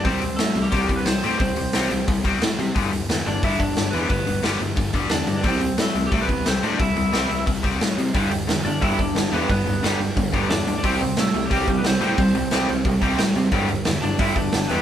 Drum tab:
HH |oooooooo|oooooooo|oooooooo|oooooooo|
SD |--o---o-|--o---o-|--o---o-|--o---o-|
BD |o---oo--|o---oo--|o---oo--|o---oo--|

HH |oooooooo|oooooooo|oooooooo|oooooooo|
SD |--o---o-|--o---o-|--o---o-|--o---o-|
BD |o---oo--|o---oo--|o---oo--|o---oo--|

HH |oooooooo|oooooooo|oooooooo|
SD |--o---o-|--o---o-|--o---o-|
BD |o---oo--|o---oo--|o---oo--|